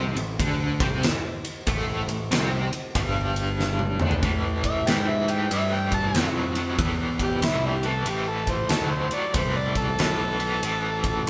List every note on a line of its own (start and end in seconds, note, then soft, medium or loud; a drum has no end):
0.00 0.14 C2 medium
0.00 0.15 C3 loud
0.00 0.16 C4 loud
0.16 0.38 A1 medium
0.16 0.35 A2 medium
0.16 ride medium
0.39 0.77 D2 loud
0.39 0.79 D3 medium
0.39 0.80 D4 loud
0.39 kick loud
0.39 ride medium
0.80 1.02 C2 medium
0.80 1.03 C3 loud
0.80 1.04 C4 medium
0.80 kick loud
0.80 ride medium
1.03 snare loud
1.03 ride medium
1.45 ride medium
1.67 2.05 A1 medium
1.67 2.07 A2 medium
1.67 2.07 A3 loud
1.67 kick loud
1.67 ride loud
2.08 2.29 A1 medium
2.08 2.27 A2 medium
2.08 ride medium
2.31 2.69 C2 medium
2.31 2.71 C3 loud
2.31 2.71 C4 loud
2.31 snare loud
2.31 ride loud
2.72 muted picked electric bass stroke soft
2.72 muted overdriven electric guitar stroke medium
2.72 ride medium
2.95 3.96 G1 medium
2.95 3.99 G2 medium
2.95 3.99 G3 medium
2.95 kick loud
2.95 ride loud
3.36 ride medium
3.60 snare medium
3.79 high tom medium
4.00 4.21 D2 medium
4.00 4.22 D3 medium
4.00 4.23 D4 medium
4.00 mid tom medium
4.11 floor tom medium
4.23 4.85 A2 medium
4.23 4.82 A2 medium
4.23 4.83 E3 medium
4.23 kick loud
4.23 ride medium
4.64 4.89 E5 medium
4.64 kick medium
4.64 ride medium
4.87 5.49 G#2 medium
4.87 5.24 A2 medium
4.87 5.24 E3 medium
4.87 5.10 G5 medium
4.87 snare loud
4.87 ride medium
5.09 5.32 E5 medium
5.28 5.49 A2 medium
5.28 5.49 E3 medium
5.28 5.51 G5 medium
5.28 ride medium
5.51 6.13 G2 medium
5.51 6.11 A2 medium
5.51 6.11 E3 medium
5.51 5.75 E5 medium
5.51 ride loud
5.73 5.93 G5 medium
5.92 6.28 A5 medium
5.92 kick medium
5.92 ride medium
6.15 6.77 F2 medium
6.15 6.52 A2 medium
6.15 6.53 F#3 medium
6.15 snare loud
6.15 ride medium
6.55 6.77 A2 medium
6.55 6.77 F#3 medium
6.55 ride medium
6.79 7.41 E2 medium
6.79 7.38 A2 medium
6.79 7.39 E3 medium
6.79 kick loud
6.79 ride loud
7.19 7.46 G4 loud
7.19 kick medium
7.19 ride medium
7.42 8.05 C2 medium
7.42 7.79 A2 medium
7.42 7.80 E3 medium
7.42 7.65 E4 medium
7.42 snare loud
7.42 ride medium
7.66 7.73 D4 medium
7.66 7.74 E4 medium
7.66 7.88 G4 medium
7.83 8.04 A2 medium
7.83 8.04 E3 medium
7.83 8.07 A4 medium
7.83 ride medium
8.06 8.68 A1 medium
8.06 8.66 A2 medium
8.06 8.66 E3 medium
8.06 8.30 G4 medium
8.06 ride medium
8.28 8.51 A4 medium
8.47 8.72 C5 medium
8.47 kick medium
8.47 ride medium
8.69 9.08 D2 medium
8.69 9.08 A2 medium
8.69 9.08 F#3 medium
8.69 8.93 A4 medium
8.69 snare loud
8.69 ride medium
8.91 9.15 C5 medium
9.11 9.33 A2 medium
9.11 9.33 F#3 medium
9.11 9.36 D5 medium
9.11 muted picked electric bass stroke soft
9.11 ride medium
9.34 9.97 C2 medium
9.34 9.95 A2 medium
9.34 9.95 E3 medium
9.34 9.55 C5 medium
9.34 kick loud
9.34 ride loud
9.56 9.76 D5 medium
9.75 11.30 A4 loud
9.75 kick medium
9.75 ride medium
9.99 10.61 B1 medium
9.99 10.36 A2 medium
9.99 10.37 E3 loud
9.99 snare loud
9.99 ride medium
10.40 10.61 A2 medium
10.40 10.61 E3 medium
10.40 ride medium
10.63 11.25 A1 medium
10.63 11.23 A2 medium
10.63 11.23 E3 medium
10.63 ride medium
11.04 kick medium
11.04 ride medium
11.26 11.30 A2 medium